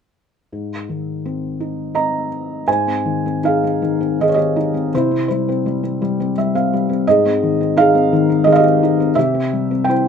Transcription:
felt piano
0.52 G#2
0.89 D#3
1.26 C4
1.60 D#4
1.95 C4 D#5 A#5
2.68 G#2 C5 G#5
2.87 C4
3.06 D#3
3.26 C4
3.44 D#4 G#4 F5
3.64 C4
3.82 D#3
4.01 C4
4.20 D#3 G#4 D#5
4.29 C#5
4.34 C4 G4 D#5
4.56 D#4
4.74 C4
4.94 C3 E4 C5
5.11 C4
5.28 G3 E4 C5
5.49 C4
5.66 G3
5.83 C4
6.02 G3
6.20 C4
6.38 G3 E5
6.55 C4 F5
6.73 G3
6.89 C4
7.07 G#2 G#4 D#5
7.26 C4
7.43 D#3
7.61 C4
7.77 D#4 G#4 F5
7.95 C4
8.13 D#3
8.30 C4
8.44 D#3 G#4 D#5
8.52 D#5 F5
8.60 G4
8.64 C4
8.83 D#4
9.00 C4
9.15 C3 G4 E5
9.34 C4
9.53 G3
9.71 C4
9.84 G5
9.89 E4 C5

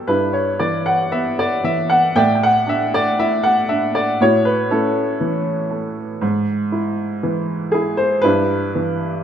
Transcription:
upright piano
Already playing: G3
0.07 G2 D4 E4 B4
0.33 C#5
0.59 E3 D5
0.86 F#5
1.12 B3 E5
1.39 D5
1.64 E3 E5
1.90 F#5
2.15 A2 D5 E5 G5
2.35 G5
2.43 F#5
2.67 D4 E5
2.94 D5
3.19 E4 E5
3.43 F#5
3.69 D4 E5
3.95 D5
4.21 A2 E4 F#4 C#5
4.45 B4
4.71 A3 C#4 E4 A4
5.21 E3
5.70 A3
6.21 G#2
6.72 E4
7.23 E3
7.72 E4 G#4
7.97 C5
8.22 G2 D4 E4 B4
8.75 E3

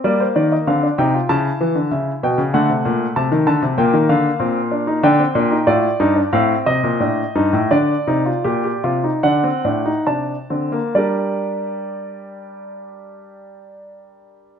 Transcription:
grand piano
0.04 G3 A#3 D5
0.20 C5
0.36 D#3 D5
0.52 D#5
0.67 D3 C4 F5
0.83 D4
0.98 C3 D#4 G5
1.14 F4
1.29 C#3 E4 A5
1.61 E3
1.75 D3
1.91 C#3 E5
2.23 B2 G5
2.38 C#3
2.54 D3 A3 F#5
2.69 C3
2.85 A#2
3.16 C3 A5
3.32 D#3
3.47 D3 A5
3.63 C3
3.78 A#2 A#3 G5
3.93 D#3
4.09 D3 F5
4.40 A#2 C4
4.71 D4
4.87 D#4
5.03 D3 D4 G5
5.19 C4
5.35 A#2 D4
5.51 D#4
5.67 A2 F4 D5
6.00 G2 D#4
6.16 D4
6.33 A2 C4 F5
6.66 C3 D#5
6.83 A#2
7.00 A2 D4
7.35 G2 D#4
7.53 A2
7.71 D3 D4 D5
8.07 C3 D#4
8.26 F4
8.44 A#2 G4
8.64 G4
8.84 C3 F4
9.04 D#4
9.23 D3 D4 F#5
9.44 C4
9.64 A2 D4
9.86 D#4
10.07 C3 D4 A5
10.50 D3 C4
10.72 A#3
10.95 G3 D4 G4 A#4 D5

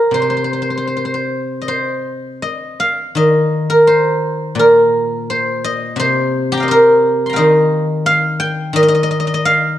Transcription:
guzheng
Already playing: A#4 C5
0.11 C3 C5
0.22 C5
0.30 C5
0.37 C5
0.44 C5
0.53 C5
0.62 C5
0.70 C5
0.77 C5
0.87 C5
0.97 C5
1.05 C5
1.14 C5
1.62 D#5
1.68 C5
2.42 D#5
2.80 F5
3.15 D#3 D#5
3.70 A#4
3.87 C5
4.55 A#2
4.59 A#4
5.30 C5
5.64 D#5
5.96 C3 C5
6.52 G4 A#5
6.57 F5 G5
6.63 D#5
6.68 A#4 C5
7.26 A#5 C6
7.33 D#5 F5 G5
7.38 D#3
8.06 F5
8.40 G5
8.73 D#3 D#5
8.83 D#5
8.88 D#5
8.95 D#5
9.03 D#5
9.11 D#5
9.20 D#5
9.27 D#5
9.34 D#5
9.45 F5

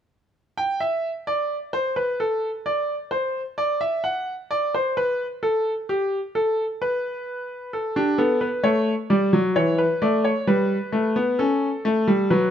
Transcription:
grand piano
0.57 G5
0.80 E5
1.27 D5
1.73 C5
1.96 B4
2.20 A4
2.66 D5
3.11 C5
3.58 D5
3.81 E5
4.04 F#5
4.51 D5
4.75 C5
4.97 B4
5.43 A4
5.89 G4
6.35 A4
6.82 B4
7.73 A4
7.96 D4 G4
8.18 B3 A4
8.41 B4
8.63 A3 C#5
9.10 G3 D5
9.33 F#3
9.56 E3 C#5
9.78 B4
10.02 A3 D5
10.24 C#5
10.47 G3 B4
10.93 A3
11.16 B3
11.39 C#4 A4
11.85 A3
12.07 G3
12.30 F#3 B4

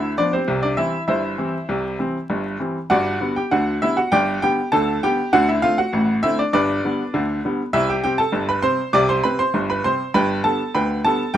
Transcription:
upright piano
Already playing: D2 D3 E4 E5
0.18 F3 B3 D4 D5
0.33 C4 G4 C5
0.48 C2 C3
0.63 D4 D5
0.77 E3 G3 C4 E4 E5
1.08 G1 G2 E4 C5 E5
1.38 E3 G3 C4
1.69 C2 C3
1.99 E3 G3 C4
2.30 G1 G2
2.60 E3 G3 C4
2.90 G1 G2 F#4 D5 F#5
3.21 D3 G3 B3
3.36 G4 G5
3.51 D2 D3 F#4 F#5
3.82 D3 G3 B3 E4 E5
3.97 F#4 F#5
4.12 G1 G2 G4 D5 G5
4.42 D3 G3 B3 G4 G5
4.72 D2 D3 A4 A5
5.03 D3 G3 B3 G4 G5
5.33 D2 D3 F#4 F#5
5.49 E4 E5
5.62 D3 A3 C4 F4 F5
5.78 F#4 F#5
5.93 A1 A2
6.23 D3 A3 C4 E4 E5
6.39 D4 D5
6.53 G1 G2 D4 B4 D5
6.85 D3 G3 B3
7.14 D2 D3
7.45 D3 G3 B3
7.73 C2 C3 E4 E5
7.90 G4 G5
8.04 C3 G3 C4 G4 G5
8.18 A4 A5
8.32 G1 G2
8.49 B4 B5
8.62 C3 G3 C4 C5 C6
8.93 C2 C3 D5 D6
9.09 C5 C6
9.23 C3 G3 C4 B4 B5
9.39 C5 C6
9.54 G1 G2
9.70 B4 B5
9.84 C3 G3 C4 C5 C6
10.14 G1 G2 B4 G5 B5
10.44 D3 G3 B3 A4 A5
10.75 D2 D3 B4 G5 B5
11.04 D3 G3 B3 A4 A5
11.34 G5

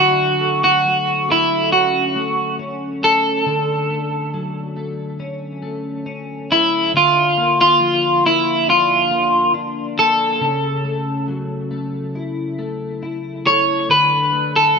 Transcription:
clean electric guitar
Already playing: D3 F#3 A3
0.00 F#4
0.41 A3
0.64 F#4
0.85 F#3
1.28 A3 E4
1.72 C#4 F#4
2.16 A3
2.59 C#4
3.02 A3 A4
3.46 D3
3.90 A3
4.34 F#3
4.77 A3
5.20 C#4
5.62 A3
6.06 C#4
6.50 A3 E4
6.94 D3 F4
7.37 A#3
7.61 F4
7.80 F3
8.24 A#3 E4
8.67 D4 F4
9.11 A#3
9.54 D4
9.97 A#3 A4
10.41 C#3
10.85 A3
11.28 F#3
11.71 A3
12.15 E4
12.59 A3
13.03 E4
13.45 A3 C#5
13.89 D3 B4
14.32 A3
14.56 A4

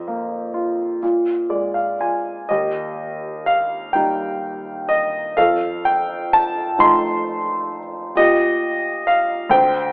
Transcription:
grand piano
Already playing: F2 D#5 C6
0.08 A#3
0.54 F4
1.03 A#2
1.50 G#3 D5
1.74 F5
2.01 F4 G#5
2.49 D#2 G4 D#5
3.46 F5
3.93 G3 A#3 D#4 G5
4.89 D#5
5.37 F2 A4 F5
5.85 G5
6.33 A5
6.78 F3 A3 D#4 C6
8.15 A#2 G4 D#5
9.07 F5
9.49 D2 C5 G5

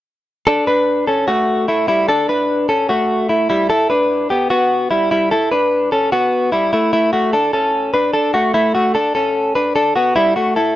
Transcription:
clean electric guitar
0.47 D4 A4
0.67 D4 B4
1.07 C#4 A4
1.28 A3 F#4
1.68 A3 E4
1.88 G3 E4
2.09 D4 A4
2.29 D4 B4
2.69 C#4 A4
2.89 A3 F#4
3.29 A3 E4
3.50 G3 E4
3.70 E4 A4
3.90 D4 B4
4.30 B3 G4
4.50 B3 F#4
4.91 G3 E4
5.11 G3 E4
5.31 E4 A4
5.51 D4 B4
5.92 C#4 A4
6.12 B3 F#4
6.52 G3 E4
6.73 A3 E4
6.93 A3 E4
7.13 A3 F#4
7.33 D4 A4
7.53 C#4 A4
7.94 D4 B4
8.13 D4 A4
8.34 A3 F#4
8.54 A3 E4
8.75 A3 F#4
8.95 D4 A4
9.15 C#4 A4
9.55 D4 B4
9.76 D4 A4
9.96 B3 F#4
10.16 G3 E4
10.36 A3 F#4
10.56 E4 A4

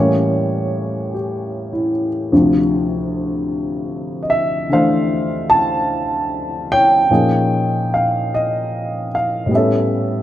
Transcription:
upright piano
Already playing: A2 E3 G3 A#3 G4 C#5
0.00 C#4
1.14 G4
1.73 E4
2.32 D2 C3 D3 F3
4.23 D#5
4.30 E5
4.69 D3 E3 A3 D4 C5 F5
5.50 A5
6.72 C#5 G5
7.11 A#2 F3 A#3 C#4 D#4 G#4
7.94 F5
8.34 D#5
9.15 F5
9.46 A2 G3
9.51 B3 C#4 E5
9.56 A4 C#5

